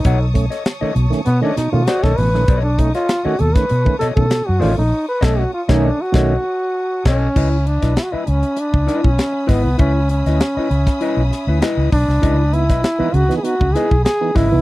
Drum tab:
CC |----------------|----------------|--x-----------x-|x---------------|
HH |x-xxx-xxx-x-x-o-|x-xxx-xxx-x-x-o-|----------------|--xxx-xxx-x-x-o-|
SD |---oo--o--o-oo-o|---oo--o--o-o-o-|--o--o--o-----o-|---oo-----o-o-o-|
BD |o-o----------o--|o-o----o-o-o----|--o--o--o-----o-|o--o-----o-o--o-|

CC |----------------|----------------|
HH |x-xxx-xxx-x-x-o-|x-xxx-xxx-x-x-o-|
SD |---oo--o--o-o--o|---oo--o--o-o-o-|
BD |o------o------o-|o--o-----o-o--o-|